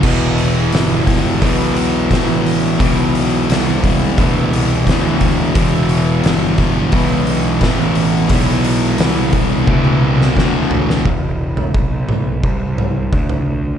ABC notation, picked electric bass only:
X:1
M:4/4
L:1/8
Q:1/4=87
K:Clyd
V:1 name="Picked electric bass" clef=bass
E,,,2 G,,,2 B,,,2 A,,,2 | B,,,2 C,,2 D,, C,, D,,2 | E,,,2 G,,,2 B,,,2 A,,,2 | B,,,2 C,,2 D,, C,, D,,2 |
E,,,2 B,,,2 C,,2 D,,2 |]